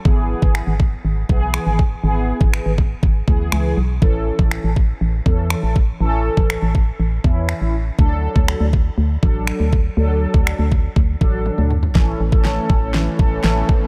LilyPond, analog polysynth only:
\new Staff \with { instrumentName = "Analog polysynth" } { \time 4/4 \key a \major \tempo 4 = 121 <e b gis'>4~ <e b gis'>16 r4 r16 <e b gis'>4 r8 | <e b gis'>4~ <e b gis'>16 r4 r16 <e b gis'>4 r8 | <e cis' a'>4~ <e cis' a'>16 r4 r16 <e cis' a'>4 r8 | <e cis' a'>4~ <e cis' a'>16 r4 r16 <e cis' e'>4 r8 |
<fis d' a'>4~ <fis d' a'>16 r4 r16 <fis d' a'>4 r8 | <fis d' a'>4~ <fis d' a'>16 r4 r16 <fis d' a'>4 r8 | <e cis' a'>8 r16 <e cis' a'>4~ <e cis' a'>16 r8 <e cis' a'>4 r8 | }